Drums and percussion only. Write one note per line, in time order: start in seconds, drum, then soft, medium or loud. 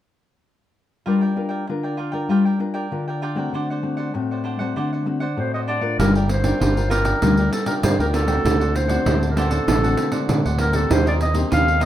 6.00 pandeiro medium
6.15 pandeiro soft
6.29 pandeiro medium
6.44 pandeiro medium
6.61 pandeiro medium
6.77 pandeiro soft
6.91 pandeiro medium
7.05 pandeiro medium
7.22 pandeiro medium
7.37 pandeiro soft
7.53 pandeiro medium
7.66 pandeiro medium
7.83 pandeiro medium
8.00 pandeiro soft
8.14 pandeiro medium
8.28 pandeiro medium
8.45 pandeiro medium
8.61 pandeiro soft
8.76 pandeiro medium
8.89 pandeiro medium
9.06 pandeiro medium
9.23 pandeiro soft
9.37 pandeiro medium
9.51 pandeiro medium
9.68 pandeiro medium
9.84 pandeiro soft
9.97 pandeiro medium
10.12 pandeiro medium
10.29 pandeiro medium
10.46 pandeiro soft
10.58 pandeiro medium
10.73 pandeiro medium
10.91 pandeiro medium
11.07 pandeiro soft
11.21 pandeiro medium
11.34 pandeiro medium
11.52 pandeiro medium
11.68 pandeiro soft
11.81 pandeiro medium